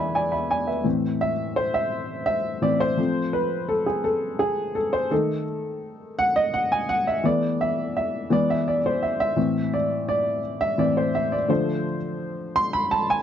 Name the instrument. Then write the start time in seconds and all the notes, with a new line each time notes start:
grand piano
Already playing: E2 E3 E4 G#4 B4 D5 E5 G#5 B5
0.15 D5 G#5
0.32 E5 B5
0.51 D5 G#5
0.67 B4 E5
0.84 A2 E3 C4
1.21 E5
1.56 C5
1.74 E5
2.26 E5
2.61 A2 E3 C4 D5
2.80 C5
2.97 F3 A3 C4
3.33 B4
3.69 A4
3.86 G#4
4.04 A4
4.39 G#4
4.75 A4
4.93 C5
5.11 D#3 A3 D#4 A4
6.19 F#5
6.36 D#5
6.54 F#5
6.72 G#5
6.89 F#5
7.07 E5
7.24 E3 A3 B3 D5
7.61 E5
7.97 E5
8.30 E3 G#3 B3 D5
8.50 E5
8.68 D5
8.86 C5
9.03 E5
9.20 E5
9.36 A2 E3 C4
9.73 D5
10.09 D5
10.61 E5
10.78 A2 E3 C4 D5
10.97 C5
11.15 E5
11.32 D5
11.48 D3 F3 A3 C5
12.56 C6
12.73 B5
12.91 A5
13.10 G#5